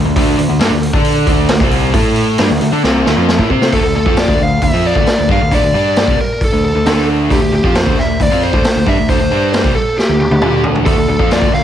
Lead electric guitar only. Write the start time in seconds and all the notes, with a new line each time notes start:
3.73 A4
3.96 A4
4.20 D5
4.43 F5
4.63 E5
4.87 D5
5.32 F5
5.54 D5
5.98 D5
6.21 A#4
6.44 A4
6.65 A4
7.32 G4
7.55 G4
7.78 C5
7.99 E5
8.23 D5
8.43 C5
8.88 E5
9.10 C5
9.53 C5
9.75 A4
9.98 G4
10.20 G4
10.86 A4
11.10 A4
11.32 D5
11.55 F5